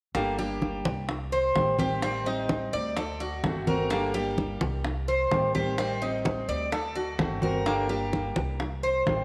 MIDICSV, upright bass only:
0, 0, Header, 1, 2, 480
1, 0, Start_track
1, 0, Key_signature, -2, "minor"
1, 0, Tempo, 469484
1, 152, Time_signature, 4, 2, 24, 8
1, 9452, End_track
2, 0, Start_track
2, 0, Title_t, "Upright bass"
2, 0, Program_c, 0, 32
2, 150, Note_on_c, 0, 31, 82
2, 831, Note_off_c, 0, 31, 0
2, 873, Note_on_c, 0, 36, 77
2, 1553, Note_off_c, 0, 36, 0
2, 1591, Note_on_c, 0, 33, 84
2, 2728, Note_off_c, 0, 33, 0
2, 2790, Note_on_c, 0, 38, 88
2, 3472, Note_off_c, 0, 38, 0
2, 3516, Note_on_c, 0, 31, 88
2, 4651, Note_off_c, 0, 31, 0
2, 4711, Note_on_c, 0, 36, 79
2, 5392, Note_off_c, 0, 36, 0
2, 5432, Note_on_c, 0, 33, 83
2, 6569, Note_off_c, 0, 33, 0
2, 6627, Note_on_c, 0, 38, 79
2, 7310, Note_off_c, 0, 38, 0
2, 7345, Note_on_c, 0, 31, 84
2, 8485, Note_off_c, 0, 31, 0
2, 8549, Note_on_c, 0, 36, 80
2, 9231, Note_off_c, 0, 36, 0
2, 9269, Note_on_c, 0, 33, 80
2, 9452, Note_off_c, 0, 33, 0
2, 9452, End_track
0, 0, End_of_file